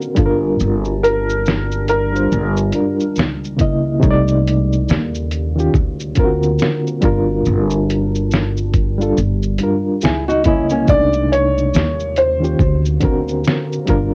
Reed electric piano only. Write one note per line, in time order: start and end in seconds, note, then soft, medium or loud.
0.00 0.19 D3 medium
0.00 0.19 C4 medium
0.00 0.19 F#4 medium
0.00 0.19 A#4 medium
0.15 1.62 G3 medium
0.15 1.62 D4 medium
0.15 1.63 F4 medium
0.19 0.26 A4 medium
0.26 1.67 A#4 loud
2.12 2.30 G3 medium
2.12 2.31 D4 medium
2.12 2.31 F4 medium
2.16 2.32 C5 medium
2.71 3.16 G3 medium
2.71 3.16 D4 medium
2.71 3.17 F4 medium
2.76 3.18 A#4 medium
3.57 3.95 C#3 medium
3.57 3.96 A#3 medium
3.57 3.97 E4 medium
3.61 3.98 D#5 medium
4.00 4.87 C3 loud
4.00 4.88 A3 loud
4.00 4.88 D#4 loud
4.04 4.11 C#5 medium
4.11 4.92 D5 loud
5.56 5.73 D#3 medium
5.56 5.74 C#4 medium
5.56 5.75 F4 medium
5.60 5.76 G4 medium
6.15 6.90 D3 medium
6.15 6.91 C4 medium
6.15 6.25 F4 medium
6.20 6.92 A#4 loud
6.25 6.95 F#4 medium
7.01 8.48 G3 medium
7.01 8.48 D4 medium
7.01 8.49 F4 medium
7.06 8.50 A#4 medium
8.98 9.16 G3 medium
8.98 9.17 D4 medium
8.98 9.18 F4 medium
9.03 9.18 A4 medium
9.59 10.02 G3 medium
9.59 10.03 D4 medium
9.59 10.04 F4 medium
9.63 10.04 A#4 medium
10.44 10.82 C#3 medium
10.44 10.82 A#3 medium
10.44 10.83 E4 medium
10.48 10.84 D#5 medium
10.87 11.74 C3 medium
10.87 11.74 A3 medium
10.87 11.75 D#4 medium
10.92 11.76 D4 loud
12.40 12.58 D#3 medium
12.40 12.59 C#4 medium
12.40 12.60 F4 medium
12.44 12.61 G4 medium
13.00 13.76 D3 medium
13.00 13.77 C4 medium
13.00 13.77 F#4 medium
13.05 13.78 A#4 loud
13.86 14.14 G3 medium
13.86 14.14 D4 medium
13.86 14.14 F4 medium
13.90 14.14 A#4 loud